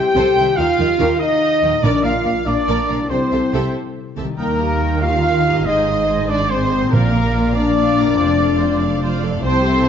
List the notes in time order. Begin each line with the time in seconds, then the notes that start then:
Already playing: C3 A3 C4 E4 G4 G5
0.15 C2 C3 A4 C5
0.36 C2 C3 D#3 A4 C5 E5 G5
0.43 A#3
0.48 D#4
0.52 G4 F5
0.57 D#2 D#3 F4 A#4 D#5 F5
0.78 D#2 D#3 A#4 D#5 G5
0.99 D#2 D#3 G4 A#4
1.20 D#4 D#5
1.62 D#2 A#2 D#3 A#4 D#5 G5
1.70 A#3
1.74 F4
1.79 A#1 D4 A#4 D5
1.83 A#2 A#4 D5
2.03 A#1 A#2 F4 A#4 D5 F5 A#5
2.25 A#1 A#2 A#4 D5 F5
2.46 A#1 A#2 D4 A#4 D5 F5 A#5
2.67 A#1 A#2 A#4 D5
2.88 A#1 A#2 C3 A#4 D5 F5 A#5
2.97 G3
3.01 E4
3.06 C4 A4
3.10 C2 C3 G4 A4 C5 G5
3.32 C2 C3 G4 A4 E5 A5
3.53 C2 C3 G4 A4 E5
4.17 C2 C3 D#3 G4 A4 E5 A5
4.25 G3
4.29 D#4
4.34 D#4 G4 A#4 G5
4.38 D#2 D#3 A#3 A#4
4.59 G4 D#5 A#5
4.81 D#4 A#4 G5
5.02 F4 G4 D#5 F5 A#5
5.25 D#4 A#4 G5
5.46 G#2 G4 D#5 A#5
5.53 C4
5.57 D#4
5.62 G#4 D#5
5.66 G#1 G#2 D#4 G#4 C5 D#5 G#5
5.87 G#4 C5 D#5 C6
6.08 G#4 C5 G#5
6.29 D4 G#4 C5 D5 D#5 C6
6.50 C4 G#4 C5 G#5
6.71 A#2 G#4 C5 D#5 C6
6.79 A#3
6.84 D4
6.88 F4 D5
6.92 A#1 A#2 A#3 A#4 F5
7.13 A#4 D5 F5 A#5
7.34 F4 D5 F5
7.54 D4 A#4 D5 F5 A#5
7.76 F4 D5 F5
7.97 F2 A#4 D5 F5 A#5
8.05 A3
8.09 C4
8.14 F1 F4 C5
8.18 F2 D5 F5
8.38 A4 D5 F5
8.59 F4 C5 D5 F5
8.80 A4 D5 F5
9.01 F4 C5 D5 F5
9.21 C3 A4 D5 F5
9.29 A3
9.34 C4
9.38 C2 E4
9.42 C3 C4 G4 C5 G5 A5
9.63 G4 A4 E5
9.67 A5